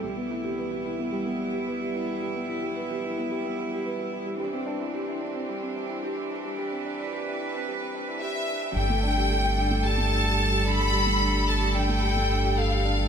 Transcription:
<<
  \new Staff \with { instrumentName = "Violin section" } { \time 4/4 \key g \mixolydian \tempo 4 = 110 r1 | r1 | r1 | r2. e''4 |
g''2 a''4. b''8~ | b''4 a''8 g''4. f''4 | }
  \new Staff \with { instrumentName = "Felt piano" } { \time 4/4 \key g \mixolydian g16 b16 e'16 g'16 b'16 g'16 e'16 b16 g16 b16 e'16 g'16 b'16 g'16 e'16 g16 | g16 b16 e'16 g'16 b'16 g'16 e'16 b16 g16 b16 e'16 g'16 b'16 g'16 e'16 g16 | g16 c'16 d'16 e'16 g'16 e'16 d'16 c'16 g16 c'16 d'16 e'16 g'16 e'16 d'16 g16 | g16 c'16 d'16 e'16 g'16 e'16 d'16 c'16 g16 c'16 d'16 e'16 g'16 e'16 d'16 g16 |
g16 a16 d'16 g'16 a'16 r16 d'16 a16 g16 a16 d'16 g'16 a'16 g'16 d'16 g16 | g16 a16 d'16 g'16 a'16 g'16 d'16 a16 g16 a16 d'16 g'16 a'16 g'16 d'16 g16 | }
  \new Staff \with { instrumentName = "String section" } { \time 4/4 \key g \mixolydian << { <g e'>1~ | <g e'>1 | <e d'>1~ | <e d'>1 |
<g a'>1~ | <g a'>1 | } \\ { b1~ | b1 | c'1 | b'1 |
d'1~ | d'1 | } >> }
  \new Staff \with { instrumentName = "Analog synth bass" } { \clef bass \time 4/4 \key g \mixolydian b,,1~ | b,,1 | c,1~ | c,1 |
g,,1~ | g,,1 | }
>>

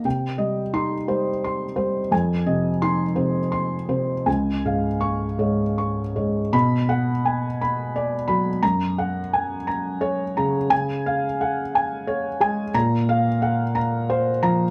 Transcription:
<<
  \new Staff \with { instrumentName = "Felt piano" } { \time 6/8 \key des \major \tempo 4. = 58 << { r4 c'''4 r4 | r4 c'''4 r4 | r4 des'''4 r4 | b''4 r2 |
bes''4 r2 | aes''4 r2 | bes''4 r2 | } \\ { g''8 ees''4 c''8 c'''8 c''8 | aes''8 ees''4 c''8 c'''8 c''8 | aes''8 f''4 des''8 des'''8 des''8 | r8 fis''8 aes''8 b''8 d''8 b''8 |
r8 ges''8 aes''8 bes''8 des''8 bes''8 | r8 f''8 ges''8 aes''8 des''8 aes''8 | r8 f''8 ges''8 bes''8 c''8 bes''8 | } >> }
  \new Staff \with { instrumentName = "Felt piano" } { \clef bass \time 6/8 \key des \major c8 g8 ees'8 g4 g8 | f,8 c8 ees'8 c4 c8 | des,8 aes,4 aes,4 aes,8 | b,2~ b,8 fis8 |
ges,2~ ges,8 des8 | des2~ des8 aes8 | bes,2~ bes,8 f8 | }
>>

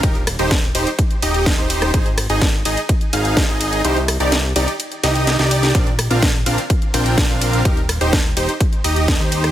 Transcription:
<<
  \new Staff \with { instrumentName = "Supersaw synth" } { \time 4/4 \key ees \major \tempo 4 = 126 <ees' g' bes'>16 r8 <ees' g' c''>16 r8 <ees' g' c''>16 r8. <ees' g' ees''>8. <ees' g' c''>8. | <ees' aes'>16 r8 <ees' aes' ees''>16 r8 <ees' aes' ees''>16 r8. <ees' aes' f''>8. <ees' aes' ees''>8. | <ees' g' c''>16 r8 <ees' g' d''>16 r8 <ees' g' d''>16 r8. <ees' g' ees''>8. <ees' g' d''>8. | <c' d' f' bes' d''>16 r8 <c' d' f' bes' f''>16 r8 <c' d' f' bes' f''>16 r8. <c' d' f' bes' g''>8. <c' d' f' bes' f''>8. |
<g' bes'>16 r8 <ees' g' c''>16 r8 <ees' g' c''>16 r8. <ees' g' ees''>8. <ees' g' c''>8. | }
  \new Staff \with { instrumentName = "Analog synth bass" } { \clef bass \time 4/4 \key ees \major r8. ees,,8. ees,,16 r8. ees,,8. ees,,8. | r8. aes,,8. aes,,16 r8. aes,,8. aes,,8. | c,8. c,8. c,16 r8. c,8. c,8. | r8. bes,,8. bes,,16 r8. bes,,8. bes,,8. |
r8. ees,,8. ees,,16 r8. ees,,8. ees,8. | }
  \new DrumStaff \with { instrumentName = "Drums" } \drummode { \time 4/4 <hh bd cymr>16 hh16 <hho cymr ss>16 hh16 <hh bd cymr sn>8 <hho cymr>16 hh16 <hh bd cymr>16 hh16 <hho cymr>16 hh16 <hh bd cymr sn>16 hh16 <hho cymr>16 <hh ss>16 | <hh bd cymr>16 hh16 <hho cymr ss>16 hh16 <hh bd cymr sn>8 <hho cymr>16 hh16 <hh bd cymr>16 hh16 <hho cymr>16 hh16 <hh bd cymr sn>16 hh16 <hho cymr>16 hh16 | <hh cymr>16 hh16 <hho cymr ss>16 hh16 <hh cymr sn>8 <hho cymr>16 hh16 <hh cymr>16 hh16 <hho cymr sn>16 hh16 <hh cymr sn>16 <hh sn>16 <hho cymr>16 <hh sn>16 | <hh bd cymr>16 hh16 <hho cymr ss>16 hh16 <hh bd cymr sn>8 <hho cymr>16 hh16 <hh bd cymr>16 hh16 <hho cymr>16 hh16 <hh bd cymr sn>16 hh16 <hho cymr>16 hh16 |
<hh bd cymr>16 hh16 <hho cymr ss>16 hh16 <hh bd cymr sn>8 <hho cymr>16 hh16 <hh bd cymr>16 hh16 <hho cymr>16 hh16 <hh bd cymr sn>16 hh16 <hho cymr>16 <hh ss>16 | }
>>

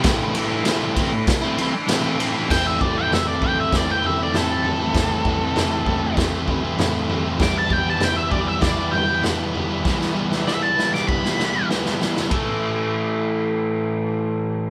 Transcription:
<<
  \new Staff \with { instrumentName = "Lead electric guitar" } { \time 4/4 \key a \minor \tempo 4 = 98 r1 | g''16 e''16 d''16 g''16 e''16 d''16 g''16 e''16 d''16 g''16 e''16 d''16 a'4~ | a'2 r2 | d'''16 a''16 g''16 a''16 g''16 e''16 d''16 e''16 d''8 g''8 r4 |
r4 e''16 a''8 d'''16 b''4 r4 | r1 | }
  \new Staff \with { instrumentName = "Overdriven electric guitar" } { \time 4/4 \key a \minor <a, e a c' e'>8 <e a c' e'>8 <a, e a c' e'>8 <e a c' e'>8. <a c' e'>16 <e a c' e'>8 <a, e a c' e'>8 <e a c' e'>16 <a c' e'>16 | <a, e a c' e'>8 <e a c' e'>16 <a c' e'>16 <a, e a c' e'>8 <e a c' e'>8 <e a c' e'>16 <a c' e'>16 <e a c' e'>16 <a c' e'>16 <a, e a c' e'>8 <e a c' e'>16 <a c' e'>16 | <a, e a c' e'>8 <e a c' e'>16 <a c' e'>16 <a, e a c' e'>8 <e a c' e'>8 <e a c' e'>16 <a c' e'>16 <e a c' e'>16 <a c' e'>16 <a, e a c' e'>8 <e a c' e'>16 <a c' e'>16 | <e g b e'>8 <e g b e'>16 <g b e'>16 <e g b e'>8 <e g b e'>8 <e g b e'>16 <g b e'>16 <e g b e'>16 <g b e'>16 <e g b e'>8 <e g b e'>16 <g b e'>16 |
<e g b e'>8 <e g b e'>16 <g b e'>16 <e g b e'>8 <e g b e'>8 <e g b e'>16 <g b e'>16 <e g b e'>16 <g b e'>16 <e g b e'>8 <e g b e'>16 <g b e'>16 | <a, e a>1 | }
  \new DrumStaff \with { instrumentName = "Drums" } \drummode { \time 4/4 <bd cymr sn>8 cymr8 <cymr sn>8 <bd cymr>8 <bd cymr sn>8 cymr8 <cymr sn>8 cymr8 | <cymc bd sn tomfh>8 <bd tomfh>8 <sn tomfh>8 <bd tomfh>8 <bd sn tomfh>8 tomfh8 <sn tomfh>8 tomfh8 | <bd sn tomfh>8 <bd tomfh>8 <sn tomfh>8 <bd tomfh>8 <bd sn tomfh>8 <bd tomfh>8 <sn tomfh>8 tomfh8 | <bd sn tomfh>8 <bd tomfh>8 <sn tomfh>8 <bd tomfh>8 <bd sn tomfh>8 tomfh8 <sn tomfh>8 tomfh8 |
<bd sn>16 sn8 sn16 sn8 sn16 sn16 bd16 sn16 sn8 sn16 sn16 sn16 sn16 | <bd rb>4 r4 r4 r4 | }
>>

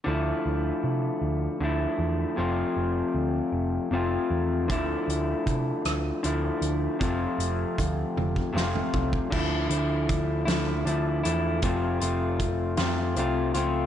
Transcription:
<<
  \new Staff \with { instrumentName = "Clean electric guitar" } { \time 6/8 \key d \minor \tempo 4. = 52 <d f a e'>2 <d f a e'>4 | <f, c f a c' f'>2 <f, c f a c' f'>4 | <d f a e'>2 <d f a e'>4 | <f, c f a c' f'>2 <f, c f a c' f'>4 |
<d f a e'>8 <f a e'>4 <d f a e'>8 <d f a e'>8 <f a e'>8 | <f, c f a c' f'>8 <f a c' f'>4 <f, c f a c' f'>8 <f a c' f'>8 <f a c' f'>8 | }
  \new Staff \with { instrumentName = "Picked electric bass" } { \clef bass \time 6/8 \key d \minor d,8 d,8 c8 d,8 d,8 e,8 | f,,8 f,,8 d,8 f,,8 f,,8 e,8 | d,8 d,8 c8 d,8 d,8 d,8 | f,,8 f,,8 d,8 f,,8 f,,8 c,8 |
d,8 d,8 d,8 d,8 d,8 e,8 | f,,8 f,,8 f,,8 f,8 c,8 cis,8 | }
  \new DrumStaff \with { instrumentName = "Drums" } \drummode { \time 6/8 r4. r4. | r4. r4. | <hh bd>8 hh8 <hh bd>8 <hh ss>8 hh8 hh8 | <hh bd>8 hh8 <hh bd>8 tommh16 bd16 sn16 toml16 bd16 bd16 |
<cymc bd>8 hh8 <hh bd>8 <hh sn>8 hh8 hh8 | <hh bd>8 hh8 <hh bd>8 <hh sn>8 hh8 hh8 | }
>>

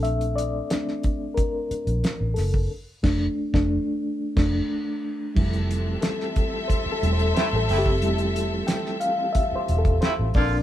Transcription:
<<
  \new Staff \with { instrumentName = "String section" } { \time 4/4 \key f \major \tempo 4 = 90 r1 | r1 | <c' a' e''>1~ | <c' a' e''>2.~ <c' a' e''>8 r8 | }
  \new Staff \with { instrumentName = "Reed electric piano" } { \time 4/4 \key f \major e''8 d''4. bes'4. a'8 | r8 <a d'>8 r16 <a d'>8 r8. <a d'>8 r4 | r4 a'4 \tuplet 3/2 { c''8 a'8 c''8 c''8 a'8 g'8~ } | g'8 r8 g''8 f''8 \tuplet 3/2 { e''8 c''8 a'8 } c''8 d''8 | }
  \new Staff \with { instrumentName = "Reed electric piano" } { \time 4/4 \key f \major <a c' d'>4 <a c' d'>8 r2 r8 | r1 | <g a e'>2~ <g a e'>8 <g a e'>8 r4 | <g a e'>8 r2. <bes c' d'>8 | }
  \new Staff \with { instrumentName = "Horn section" } { \time 4/4 \key f \major r1 | r1 | r2. <c a e'>16 r16 <c a e'>8 | r2. <c a e'>16 r16 <d bes f'>8 | }
  \new Staff \with { instrumentName = "Tonewheel organ" } { \clef bass \time 4/4 \key f \major r1 | r1 | <e f c' g' a'>1~ | <e f c' g' a'>2.~ <e f c' g' a'>8 <bes, f d'>8 | }
  \new Staff \with { instrumentName = "Fingered electric bass" } { \clef bass \time 4/4 \key f \major bes,,4 r4. r16 bes,,16 r16 a,,16 ges,,8 | r8 f,,8 r16 f,,8 r8. f,,8 r4 | f,,4 r4. e,,8 r16 a,,16 ges,,8 | f,,4 r4. e,,8 r16 a,,16 bes,,8 | }
  \new DrumStaff \with { instrumentName = "Drums" } \drummode { \time 4/4 hh16 hh16 hh8 <hh sn>16 sn16 <hh bd>8 <hh bd>8 hh16 hh16 <hh sn>8 <hho sn>16 bd16 | r8 <cymc bd sn>8 r16 <bd sn>8. r8 <cymc bd sn>8 r4 | <cymc bd>16 hh16 hh8 <hh sn>16 sn16 <hh bd>8 <hh bd>8 hh16 hh16 <hh sn>8 <hho sn>16 bd16 | hh16 hh16 hh8 <hh sn>16 sn16 hh8 <hh bd>8 hh16 <hh bd>16 <hh sn>8 <hho bd sn>8 | }
>>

